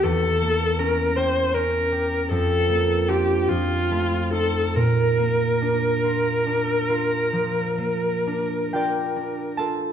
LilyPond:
<<
  \new Staff \with { instrumentName = "Viola" } { \time 12/8 \key bes \major \tempo 4. = 48 a'4 bes'8 c''8 bes'4 a'4 g'8 f'4 a'8 | bes'1~ bes'4. r8 | }
  \new Staff \with { instrumentName = "Harp" } { \time 12/8 \key bes \major << { r1. | r1 r8 <g' d'' g''>4 <a' a''>8 | } \\ { <e, bes>8 bes8 cis'8 g'8 cis'8 g'8 f,8 bes8 <d' f'>8 f,8 a8 <ees' f'>8 | bes,8 bes8 d'8 f'8 d'8 f'8 f8 bes8 d'8 f'8 d'8 f'8 | } >> }
>>